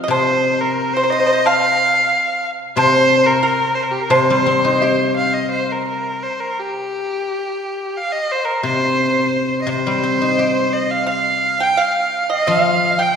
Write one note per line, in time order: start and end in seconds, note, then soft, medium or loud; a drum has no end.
0.00 0.78 F3 medium
0.00 0.27 C4 soft
0.00 0.45 F4 soft
0.00 0.62 G4 soft
0.00 0.79 C5 soft
0.00 0.10 D#5 soft
0.08 2.12 C3 medium
0.08 0.92 C5 medium
0.08 0.62 C5 medium
0.08 high woodblock medium
0.61 0.95 A#4 medium
0.94 1.11 C5 medium
0.94 1.02 C5 medium
1.04 1.10 C5 soft
1.10 1.18 C5 medium
1.10 1.47 D#5 medium
1.20 1.25 C5 soft
1.27 1.31 C5 medium
1.33 1.40 C5 soft
1.46 2.45 F5 medium
1.46 2.41 F5 medium
1.46 high woodblock medium
2.76 4.09 C3 medium
2.76 3.27 C5 medium
2.76 3.40 C5 medium
2.76 high woodblock medium
3.26 3.42 A#4 medium
3.43 3.73 A#4 medium
3.43 3.76 A#4 medium
3.74 3.85 C5 medium
3.83 3.92 A#4 medium
3.91 4.02 G4 medium
4.01 4.13 A#4 medium
4.10 6.24 C3 medium
4.10 5.13 C5 medium
4.10 5.16 C5 medium
4.10 high woodblock medium
4.30 5.72 G3 soft
4.46 5.89 C4 soft
4.65 6.07 D#4 soft
4.81 6.25 G4 soft
4.81 low woodblock soft
5.17 5.35 F5 medium
5.34 5.51 D#5 medium
5.52 5.73 C5 medium
5.72 5.88 A#4 medium
5.88 6.24 A#4 medium
6.23 6.42 C5 medium
6.40 6.60 A#4 medium
6.59 7.99 G4 medium
7.97 8.13 F5 medium
8.12 8.33 D#5 medium
8.31 8.46 C5 medium
8.45 8.63 A#4 medium
8.63 9.65 C3 soft
8.63 9.57 C5 medium
9.62 9.71 D#5 medium
9.67 11.78 C3 soft
9.67 10.74 C5 medium
9.87 11.26 G3 soft
10.03 11.44 C4 soft
10.22 11.62 D#4 soft
10.39 11.79 G4 soft
10.73 10.92 D#5 medium
10.91 11.08 F5 medium
11.06 11.57 F5 medium
11.06 11.65 F5 medium
11.60 11.77 G5 medium
11.60 11.82 G5 medium
11.77 12.27 F5 medium
11.77 12.32 F5 medium
12.30 12.47 D#5 medium
12.30 12.53 D#5 medium
12.47 13.16 F3 soft
12.47 12.96 F5 medium
12.52 13.03 F5 medium
12.99 13.15 G5 medium
12.99 13.16 G5 medium